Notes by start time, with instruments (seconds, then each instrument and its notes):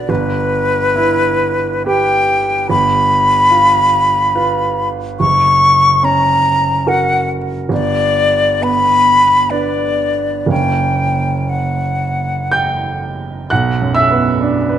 Already playing: grand piano D4 F#4 B4, flute D5
0.09 grand piano G1, flute B4
0.96 grand piano E4
1.86 grand piano G4 B4, flute G5
2.70 grand piano G1, flute B5
3.51 grand piano F4
4.35 grand piano F4 B4
5.20 grand piano F#1, flute C#6
6.03 grand piano C#4, flute A#5
6.87 grand piano F#4 A#4, flute F#5
7.69 grand piano G1, flute D5
8.61 grand piano B3, flute B5
9.50 grand piano D4 B4, flute D5
10.46 grand piano F#1 A#3 C#4 C#5
10.50 flute G5
11.49 flute F#5
12.52 grand piano G5 G6
13.50 grand piano B1 F#5 F#6
13.82 grand piano F#2
13.95 grand piano E5 E6
14.11 grand piano B3
14.41 grand piano D4
14.69 grand piano B4